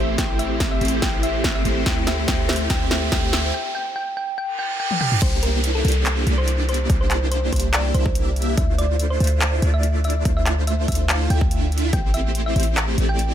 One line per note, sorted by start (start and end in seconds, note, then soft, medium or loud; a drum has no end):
0.00 0.16 A1 loud
0.00 0.17 A3 medium
0.00 0.17 C4 medium
0.00 0.17 E4 medium
0.00 0.17 G4 medium
0.00 0.17 C5 medium
0.00 riser medium
0.18 0.79 A1 medium
0.18 0.79 A3 medium
0.18 0.79 C4 medium
0.18 0.79 E4 medium
0.18 0.79 G4 medium
0.18 0.79 C5 medium
0.18 0.32 G5 medium
0.18 kick medium
0.18 snare medium
0.18 closed hi-hat medium
0.39 0.59 E5 medium
0.39 closed hi-hat medium
0.60 kick loud
0.60 snare medium
0.60 closed hi-hat medium
0.71 0.91 E5 medium
0.81 1.00 A1 loud
0.81 1.01 A3 medium
0.81 1.01 C4 medium
0.81 1.01 E4 medium
0.81 1.01 G4 medium
0.81 1.01 C5 medium
0.81 closed hi-hat soft
0.85 closed hi-hat medium
0.88 closed hi-hat medium
1.02 1.63 A1 loud
1.02 1.63 A3 medium
1.02 1.63 C4 medium
1.02 1.63 E4 medium
1.02 1.63 G4 medium
1.02 1.63 C5 medium
1.02 1.16 G5 medium
1.02 kick loud
1.02 snare medium
1.02 closed hi-hat medium
1.23 1.43 E5 medium
1.23 closed hi-hat medium
1.44 kick loud
1.44 snare medium
1.44 closed hi-hat medium
1.55 1.75 E5 medium
1.65 1.84 A1 loud
1.65 1.85 A3 medium
1.65 1.85 C4 medium
1.65 1.85 E4 medium
1.65 1.85 G4 medium
1.65 1.85 C5 medium
1.65 closed hi-hat medium
1.86 2.26 D2 medium
1.86 2.27 A3 medium
1.86 2.27 C4 medium
1.86 2.27 E4 medium
1.86 2.27 G4 medium
1.86 2.27 C5 medium
1.86 2.00 G5 medium
1.86 kick loud
1.86 snare medium
1.86 closed hi-hat medium
2.07 2.27 E5 loud
2.07 snare medium
2.07 closed hi-hat medium
2.28 2.68 D2 loud
2.28 2.69 A3 medium
2.28 2.69 C4 medium
2.28 2.69 E4 medium
2.28 2.69 G4 medium
2.28 2.69 C5 medium
2.28 2.42 G5 loud
2.28 kick loud
2.28 snare medium
2.28 closed hi-hat medium
2.49 2.69 E5 loud
2.49 snare medium
2.49 closed hi-hat medium
2.53 closed hi-hat medium
2.56 closed hi-hat medium
2.70 3.10 D2 medium
2.70 3.11 A3 medium
2.70 3.11 C4 medium
2.70 3.11 E4 medium
2.70 3.11 G4 medium
2.70 3.11 C5 medium
2.70 2.84 G5 loud
2.70 kick loud
2.70 snare medium
2.70 closed hi-hat medium
2.91 3.10 E5 medium
2.91 snare medium
2.91 closed hi-hat medium
3.12 3.52 D2 loud
3.12 3.53 A3 medium
3.12 3.52 C4 medium
3.12 3.53 E4 medium
3.12 3.52 G4 medium
3.12 3.53 C5 medium
3.12 3.26 G5 loud
3.12 kick loud
3.12 snare medium
3.12 closed hi-hat medium
3.33 3.53 E5 loud
3.33 snare medium
3.33 closed hi-hat medium
3.54 3.68 G5 loud
3.75 3.88 G5 loud
3.96 4.09 G5 loud
4.17 4.30 G5 loud
4.38 4.51 G5 loud
4.38 reverse cymbal medium
4.59 4.72 G5 loud
4.80 4.93 G5 loud
4.91 high tom medium
5.01 5.14 G5 loud
5.01 mid tom medium
5.12 mid tom medium
5.22 5.83 C2 medium
5.22 5.82 A#3 medium
5.22 5.82 D4 medium
5.22 5.82 E4 medium
5.22 5.82 G4 medium
5.22 5.35 C5 loud
5.22 5.82 C5 medium
5.22 kick loud
5.22 closed hi-hat medium
5.22 crash loud
5.22 downlifter medium
5.43 5.62 A#4 medium
5.43 closed hi-hat medium
5.64 closed hi-hat medium
5.75 5.94 A4 medium
5.85 6.25 C2 loud
5.85 6.24 A#3 medium
5.85 6.24 D4 medium
5.85 6.24 E4 medium
5.85 6.24 G4 medium
5.85 6.24 C5 medium
5.85 closed hi-hat medium
5.88 closed hi-hat medium
5.92 closed hi-hat medium
6.06 clap loud
6.06 closed hi-hat medium
6.27 6.88 C2 medium
6.27 6.87 A#3 loud
6.27 6.87 D4 medium
6.27 6.87 E4 medium
6.27 6.87 G4 medium
6.27 6.87 D5 loud
6.27 closed hi-hat medium
6.38 6.57 C5 loud
6.48 closed hi-hat medium
6.69 6.88 C5 loud
6.69 closed hi-hat medium
6.74 closed hi-hat medium
6.90 7.51 C2 loud
6.90 7.50 A#3 medium
6.90 7.50 D4 medium
6.90 7.50 E4 medium
6.90 7.50 G4 medium
6.90 7.50 C5 medium
6.90 kick loud
6.90 closed hi-hat medium
7.01 7.20 C5 loud
7.11 clap medium
7.11 closed hi-hat medium
7.32 7.45 C5 medium
7.32 closed hi-hat medium
7.53 7.93 C2 loud
7.53 7.93 A#3 medium
7.53 7.93 D4 medium
7.53 7.93 E4 medium
7.53 7.93 G4 medium
7.53 7.66 C5 medium
7.53 7.93 C5 medium
7.53 kick medium
7.53 closed hi-hat medium
7.56 closed hi-hat medium
7.60 closed hi-hat medium
7.73 7.87 D5 medium
7.73 clap loud
7.73 closed hi-hat medium
7.94 8.56 C2 loud
7.94 8.55 A#3 loud
7.94 8.55 D4 medium
7.94 8.55 E4 medium
7.94 8.55 G4 medium
7.94 8.14 C5 medium
7.94 8.55 E5 loud
7.94 closed hi-hat medium
8.06 kick loud
8.15 closed hi-hat medium
8.36 closed hi-hat soft
8.42 closed hi-hat medium
8.57 9.19 D2 medium
8.57 9.18 A3 medium
8.57 9.18 D4 medium
8.57 9.18 E4 medium
8.57 9.18 F4 medium
8.57 9.18 C5 medium
8.57 8.71 E5 medium
8.57 kick loud
8.57 closed hi-hat medium
8.78 8.98 D5 loud
8.78 closed hi-hat medium
8.99 closed hi-hat medium
9.10 9.30 C5 loud
9.20 9.60 D2 medium
9.20 9.60 A3 medium
9.20 9.60 D4 medium
9.20 9.60 E4 medium
9.20 9.60 F4 medium
9.20 9.60 C5 medium
9.20 closed hi-hat soft
9.24 closed hi-hat medium
9.27 closed hi-hat medium
9.41 clap loud
9.41 closed hi-hat medium
9.62 10.23 D2 loud
9.62 10.23 A3 loud
9.62 10.23 D4 medium
9.62 10.23 E4 medium
9.62 10.23 F4 medium
9.62 10.23 D5 loud
9.62 closed hi-hat medium
9.74 9.93 E5 medium
9.83 closed hi-hat medium
10.04 10.24 E5 loud
10.04 closed hi-hat soft
10.10 closed hi-hat medium
10.25 10.86 D2 medium
10.25 10.86 A3 medium
10.25 10.86 D4 medium
10.25 10.86 E4 medium
10.25 10.86 F4 medium
10.25 10.86 C5 medium
10.25 kick loud
10.25 closed hi-hat medium
10.37 10.56 E5 loud
10.46 clap medium
10.46 closed hi-hat medium
10.67 10.81 E5 medium
10.67 closed hi-hat medium
10.88 11.28 D2 loud
10.88 11.28 A3 medium
10.88 11.28 D4 medium
10.88 11.28 E4 medium
10.88 11.28 F4 medium
10.88 11.28 C5 medium
10.88 11.02 E5 medium
10.88 kick medium
10.88 closed hi-hat soft
10.92 closed hi-hat medium
10.95 closed hi-hat medium
11.09 11.23 F5 medium
11.09 clap loud
11.09 closed hi-hat medium
11.30 11.91 D2 loud
11.30 11.91 A3 medium
11.30 11.91 D4 medium
11.30 11.91 E4 medium
11.30 11.91 F4 medium
11.30 11.91 E5 loud
11.30 11.50 G5 medium
11.30 closed hi-hat medium
11.41 kick loud
11.51 closed hi-hat medium
11.72 closed hi-hat soft
11.78 closed hi-hat medium
11.93 12.54 A1 medium
11.93 12.54 A3 medium
11.93 12.54 C4 medium
11.93 12.54 E4 medium
11.93 12.54 G4 medium
11.93 12.54 C5 medium
11.93 12.07 G5 medium
11.93 kick loud
11.93 closed hi-hat medium
12.14 12.34 E5 loud
12.14 closed hi-hat medium
12.35 closed hi-hat medium
12.46 12.66 E5 loud
12.56 12.96 A1 loud
12.56 12.96 A3 medium
12.56 12.96 C4 medium
12.56 12.96 E4 medium
12.56 12.96 G4 medium
12.56 12.96 C5 medium
12.56 closed hi-hat medium
12.60 closed hi-hat medium
12.63 closed hi-hat medium
12.77 clap loud
12.77 closed hi-hat medium
12.98 13.34 A1 loud
12.98 13.34 A3 medium
12.98 13.34 C4 medium
12.98 13.34 E4 medium
12.98 13.34 G4 medium
12.98 13.34 D5 loud
12.98 closed hi-hat medium
13.09 13.29 G5 medium
13.19 closed hi-hat medium